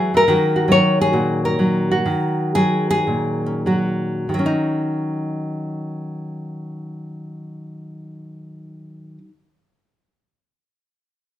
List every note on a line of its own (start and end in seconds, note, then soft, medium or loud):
0.00 0.13 E3 medium
0.00 0.14 F#3 medium
0.00 0.28 C#4 soft
0.00 0.29 F#4 soft
0.00 0.14 G#4 medium
0.14 0.27 E3 medium
0.14 0.71 A#4 medium
0.28 2.05 D#3 medium
0.28 0.68 F#3 soft
0.28 2.09 C#4 soft
0.28 0.55 F#4 medium
0.56 1.13 F#4 soft
0.68 1.58 F#3 medium
0.68 1.00 C#5 loud
1.01 1.45 G#4 medium
1.13 2.04 A#2 medium
1.13 1.91 F#4 soft
1.45 2.39 A#4 medium
1.59 2.55 F#3 medium
1.91 2.91 F#4 medium
2.06 4.27 D#3 medium
2.55 3.65 F#3 medium
2.55 2.89 G#4 loud
2.91 4.30 G#4 loud
3.07 4.27 A#2 medium
3.46 4.28 C#4 soft
3.66 4.33 F#3 medium
3.66 4.28 F#4 soft
4.29 9.18 D#3 medium
4.34 9.23 F#3 medium
4.39 9.28 C#4 medium
4.46 9.31 D#4 medium